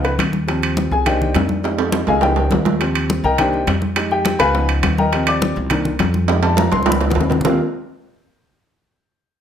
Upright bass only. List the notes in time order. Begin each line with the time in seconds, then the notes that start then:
Already playing: C#2
0.19 D#2
0.91 C2
1.35 F2
2.08 C#2
2.51 D#2
3.24 C2
3.67 F2
4.40 C#2
4.83 D#2
5.57 C2
5.99 F2
6.72 C#2
7.16 D#2
7.45 D#2